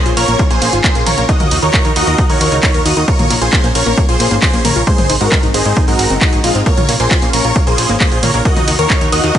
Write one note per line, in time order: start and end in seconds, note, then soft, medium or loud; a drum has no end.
0.00 1.27 A#3 medium
0.00 1.27 C#4 medium
0.00 4.83 F4 medium
0.06 0.14 A#1 medium
0.06 0.11 F4 medium
0.06 closed hi-hat medium
0.17 0.25 A#1 loud
0.17 0.22 A#3 loud
0.17 0.43 A#4 medium
0.17 0.43 C#5 loud
0.17 open hi-hat loud
0.17 ride medium
0.28 0.36 A#1 medium
0.28 0.31 A#3 loud
0.28 closed hi-hat medium
0.39 0.44 F4 medium
0.39 kick loud
0.39 closed hi-hat medium
0.50 0.58 A#1 medium
0.50 0.56 A#3 loud
0.50 0.76 G#4 medium
0.50 0.76 C5 loud
0.50 closed hi-hat medium
0.62 0.69 A#1 loud
0.62 0.65 A#3 loud
0.62 open hi-hat loud
0.62 ride medium
0.73 0.81 G#1 medium
0.73 0.78 F4 medium
0.73 closed hi-hat medium
0.84 0.89 A#3 loud
0.84 1.01 G#4 medium
0.84 1.01 C5 medium
0.84 kick loud
0.84 clap loud
0.84 closed hi-hat medium
0.95 1.03 A#1 medium
0.95 0.98 A#3 loud
0.95 closed hi-hat medium
1.06 1.14 A#1 loud
1.06 1.12 F4 medium
1.06 1.24 A#4 medium
1.06 1.24 C#5 medium
1.06 open hi-hat loud
1.06 mid tom medium
1.06 ride medium
1.18 1.25 A#1 medium
1.18 1.23 A#3 loud
1.18 closed hi-hat medium
1.29 3.06 D#3 medium
1.29 3.06 D#4 medium
1.29 1.32 D#4 loud
1.29 1.55 F#4 medium
1.29 3.06 F#4 medium
1.29 3.06 A#4 medium
1.29 1.55 D#5 loud
1.29 kick loud
1.29 closed hi-hat medium
1.40 1.48 D#2 medium
1.40 1.45 A#4 medium
1.40 closed hi-hat medium
1.40 mid tom medium
1.51 1.59 D#2 loud
1.51 1.56 D#4 loud
1.51 open hi-hat loud
1.51 ride medium
1.62 1.70 D#2 medium
1.62 1.66 D#4 loud
1.62 1.88 A#4 medium
1.62 1.88 C#5 loud
1.62 closed hi-hat medium
1.74 1.79 A#4 medium
1.74 kick loud
1.74 clap loud
1.74 closed hi-hat medium
1.85 1.93 D#2 medium
1.85 1.90 D#4 loud
1.85 closed hi-hat medium
1.96 2.04 D#2 loud
1.96 1.99 D#4 loud
1.96 2.22 F#4 medium
1.96 2.22 D#5 loud
1.96 open hi-hat loud
1.96 ride medium
2.07 2.15 D#2 medium
2.07 2.12 A#4 medium
2.07 closed hi-hat medium
2.18 2.24 D#4 loud
2.18 kick loud
2.18 closed hi-hat medium
2.29 2.37 D#2 medium
2.29 2.33 D#4 loud
2.29 2.55 A#4 medium
2.29 2.55 C#5 loud
2.29 open hi-hat medium
2.41 2.49 D#2 loud
2.41 2.46 A#4 medium
2.41 open hi-hat loud
2.41 ride medium
2.52 2.60 C#2 medium
2.52 2.57 D#4 loud
2.52 closed hi-hat medium
2.63 2.66 D#4 loud
2.63 2.80 A#4 medium
2.63 2.80 C#5 medium
2.63 kick loud
2.63 clap loud
2.63 closed hi-hat medium
2.74 2.82 D#2 medium
2.74 2.80 A#4 medium
2.74 closed hi-hat medium
2.85 2.93 D#2 loud
2.85 2.91 D#4 loud
2.85 3.03 F#4 medium
2.85 3.03 D#5 medium
2.85 open hi-hat loud
2.85 ride medium
2.97 3.04 D#2 medium
2.97 3.00 D#4 loud
2.97 closed hi-hat medium
3.08 4.85 A#3 medium
3.08 4.85 C#4 medium
3.08 3.13 F4 medium
3.08 3.34 A#4 medium
3.08 3.34 C#5 loud
3.08 kick loud
3.08 closed hi-hat medium
3.19 3.27 A#1 medium
3.19 3.24 A#3 loud
3.19 closed hi-hat medium
3.19 mid tom medium
3.30 3.38 A#1 loud
3.30 3.33 A#3 loud
3.30 open hi-hat loud
3.30 ride medium
3.41 3.49 A#1 medium
3.41 3.47 F4 medium
3.41 3.67 G#4 medium
3.41 3.67 C5 loud
3.41 closed hi-hat medium
3.53 3.58 A#3 loud
3.53 kick loud
3.53 clap loud
3.53 closed hi-hat medium
3.64 3.72 A#1 medium
3.64 3.67 A#3 loud
3.64 closed hi-hat medium
3.75 3.83 A#1 loud
3.75 3.80 F4 medium
3.75 4.01 A#4 medium
3.75 4.01 C#5 loud
3.75 open hi-hat loud
3.75 ride medium
3.86 3.94 A#1 medium
3.86 3.92 A#3 loud
3.86 closed hi-hat medium
3.97 4.01 A#3 loud
3.97 kick loud
3.97 closed hi-hat medium
4.09 4.16 A#1 medium
4.09 4.14 F4 medium
4.09 4.34 G#4 medium
4.09 4.34 C5 medium
4.09 closed hi-hat medium
4.20 4.28 A#1 loud
4.20 4.25 A#3 loud
4.20 open hi-hat loud
4.20 ride medium
4.31 4.39 G#1 medium
4.31 4.34 A#3 loud
4.31 closed hi-hat medium
4.42 4.47 F4 medium
4.42 4.59 G#4 medium
4.42 4.59 C5 medium
4.42 kick loud
4.42 clap loud
4.42 closed hi-hat medium
4.53 4.61 A#1 medium
4.53 4.59 A#3 loud
4.53 closed hi-hat medium
4.65 4.72 A#1 medium
4.65 4.68 A#3 loud
4.65 4.82 A#4 medium
4.65 4.82 C#5 medium
4.65 open hi-hat loud
4.65 mid tom medium
4.65 ride medium
4.76 4.84 A#1 medium
4.76 4.81 F4 medium
4.76 closed hi-hat medium
4.87 6.64 G#3 medium
4.87 4.92 G#3 loud
4.87 6.64 C4 medium
4.87 6.64 D#4 medium
4.87 5.13 G#4 medium
4.87 5.13 C5 loud
4.87 kick loud
4.87 closed hi-hat medium
4.98 5.06 G#1 medium
4.98 5.01 G#3 loud
4.98 closed hi-hat medium
4.98 mid tom medium
5.09 5.17 G#1 loud
5.09 5.15 D#4 medium
5.09 open hi-hat loud
5.09 ride medium
5.21 5.28 G#1 medium
5.21 5.26 G#3 loud
5.21 5.46 F#4 medium
5.21 5.46 A#4 loud
5.21 closed hi-hat medium
5.32 kick loud
5.32 clap loud
5.32 closed hi-hat medium
5.43 5.51 G#1 medium
5.43 5.48 D#4 medium
5.43 closed hi-hat medium
5.54 5.62 G#1 loud
5.54 5.59 G#3 loud
5.54 5.80 G#4 medium
5.54 5.80 C5 loud
5.54 open hi-hat loud
5.54 ride medium
5.65 5.73 G#1 medium
5.65 5.69 G#3 loud
5.65 closed hi-hat medium
5.77 5.82 D#4 medium
5.77 kick loud
5.77 closed hi-hat medium
5.88 5.96 G#1 medium
5.88 5.93 G#3 loud
5.88 6.14 F#4 medium
5.88 6.14 A#4 loud
5.88 open hi-hat medium
5.99 6.07 G#1 loud
5.99 6.07 G#3 medium
5.99 open hi-hat loud
5.99 ride medium
6.10 6.18 F#1 medium
6.10 6.15 C4 medium
6.10 closed hi-hat medium
6.21 6.27 G#3 medium
6.21 6.39 D#4 medium
6.21 6.39 F#4 medium
6.21 kick loud
6.21 clap loud
6.21 closed hi-hat medium
6.33 6.40 G#1 medium
6.33 6.40 G#4 medium
6.33 closed hi-hat medium
6.44 6.52 A#1 medium
6.44 6.61 G#3 medium
6.44 6.47 A#3 medium
6.44 6.61 F4 medium
6.44 open hi-hat loud
6.44 ride medium
6.55 6.63 G#1 medium
6.55 6.63 C4 medium
6.55 closed hi-hat medium
6.66 8.43 A#3 medium
6.66 6.69 A#3 loud
6.66 8.43 C#4 medium
6.66 9.38 F4 medium
6.66 6.92 A#4 medium
6.66 6.92 C#5 loud
6.66 kick loud
6.66 closed hi-hat medium
6.77 6.85 A#1 medium
6.77 6.83 F4 medium
6.77 closed hi-hat medium
6.77 mid tom medium
6.89 6.96 A#1 loud
6.89 6.94 A#3 loud
6.89 open hi-hat loud
6.89 ride medium
7.00 7.08 A#1 medium
7.00 7.03 A#3 loud
7.00 7.26 G#4 medium
7.00 7.26 C5 loud
7.00 closed hi-hat medium
7.11 7.16 F4 medium
7.11 kick loud
7.11 clap loud
7.11 closed hi-hat medium
7.22 7.30 A#1 medium
7.22 7.27 A#3 loud
7.22 closed hi-hat medium
7.33 7.41 A#1 medium
7.33 7.36 A#3 loud
7.33 7.59 A#4 medium
7.33 7.59 C#5 loud
7.33 open hi-hat loud
7.33 ride medium
7.45 7.52 A#1 medium
7.45 7.50 F4 medium
7.45 closed hi-hat medium
7.56 7.61 A#3 loud
7.56 kick loud
7.56 closed hi-hat medium
7.67 7.75 A#1 medium
7.67 7.70 A#3 loud
7.67 7.93 G#4 medium
7.67 7.93 C5 medium
7.67 closed hi-hat medium
7.78 7.86 A#1 loud
7.78 7.83 F4 medium
7.78 open hi-hat loud
7.78 ride medium
7.89 7.97 G#1 medium
7.89 7.95 A#3 loud
7.89 closed hi-hat medium
8.00 8.04 A#3 loud
8.00 8.18 G#4 medium
8.00 8.18 C5 medium
8.00 kick loud
8.00 clap loud
8.00 closed hi-hat medium
8.12 8.20 A#1 medium
8.12 8.17 F4 medium
8.12 closed hi-hat medium
8.23 8.31 A#1 loud
8.23 8.28 A#3 loud
8.23 8.40 A#4 medium
8.23 8.40 C#5 medium
8.23 open hi-hat loud
8.23 mid tom medium
8.23 ride medium
8.34 8.42 A#1 loud
8.34 8.37 A#3 loud
8.34 closed hi-hat medium
8.45 9.38 D#3 medium
8.45 9.38 D#4 medium
8.45 9.38 F#4 medium
8.45 8.71 F#4 medium
8.45 9.38 A#4 medium
8.45 8.50 A#4 medium
8.45 8.71 D#5 loud
8.45 kick loud
8.45 closed hi-hat medium
8.56 8.64 D#2 medium
8.56 8.62 D#4 loud
8.56 closed hi-hat medium
8.56 mid tom medium
8.68 8.75 D#2 loud
8.68 8.71 D#4 loud
8.68 open hi-hat loud
8.68 ride medium
8.79 8.87 D#2 medium
8.79 8.84 A#4 medium
8.79 9.05 A#4 medium
8.79 9.05 C#5 loud
8.79 closed hi-hat medium
8.90 8.95 D#4 loud
8.90 kick loud
8.90 clap loud
8.90 closed hi-hat medium
9.01 9.09 D#2 medium
9.01 9.04 D#4 loud
9.01 closed hi-hat medium
9.12 9.20 D#2 medium
9.12 9.38 F#4 medium
9.12 9.18 A#4 medium
9.12 9.38 D#5 loud
9.12 open hi-hat loud
9.12 ride medium
9.24 9.31 D#2 medium
9.24 9.29 D#4 loud
9.24 closed hi-hat medium
9.35 9.38 D#4 loud
9.35 kick loud
9.35 closed hi-hat medium